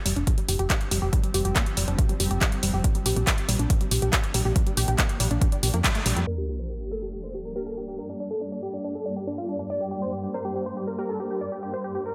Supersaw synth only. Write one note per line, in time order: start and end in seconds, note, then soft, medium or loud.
6.27 6.37 D5 loud
6.38 6.47 G4 medium
6.48 6.58 G4 medium
6.59 6.69 C5 medium
6.70 6.80 G4 medium
6.81 6.90 G4 medium
6.92 7.01 A#4 medium
7.02 7.12 G4 medium
7.13 7.23 G4 medium
7.24 7.33 C5 medium
7.34 7.44 G4 medium
7.45 7.55 A#4 medium
7.56 7.65 G4 medium
7.67 7.76 A4 medium
7.77 7.87 G4 medium
7.88 7.97 G4 medium
7.99 8.08 A#4 medium
8.09 8.19 D4 medium
8.20 8.30 D4 medium
8.31 8.40 A4 medium
8.41 8.51 D4 medium
8.52 8.62 D4 medium
8.63 8.72 G4 medium
8.74 8.83 D4 medium
8.84 8.94 D4 medium
8.95 9.05 A4 medium
9.06 9.15 D4 medium
9.16 9.26 G4 medium
9.27 9.37 D4 medium
9.38 9.48 F4 medium
9.49 9.58 D4 medium
9.59 9.69 D4 medium
9.70 9.80 D5 medium
9.81 9.90 G4 medium
9.91 10.01 G4 medium
10.02 10.12 C5 medium
10.13 10.22 G4 medium
10.23 10.33 G4 medium
10.34 10.44 A#4 medium
10.45 10.54 G4 medium
10.56 10.65 G4 medium
10.66 10.76 C5 medium
10.77 10.87 G4 medium
10.87 10.97 A#4 medium
10.98 11.08 G4 medium
11.09 11.19 A4 medium
11.20 11.29 G4 medium
11.31 11.40 G4 medium
11.41 11.51 D5 medium
11.52 11.62 G4 medium
11.63 11.72 G4 medium
11.74 11.83 C5 medium
11.84 11.94 G4 medium
11.95 12.05 G4 medium
12.06 12.15 A#4 loud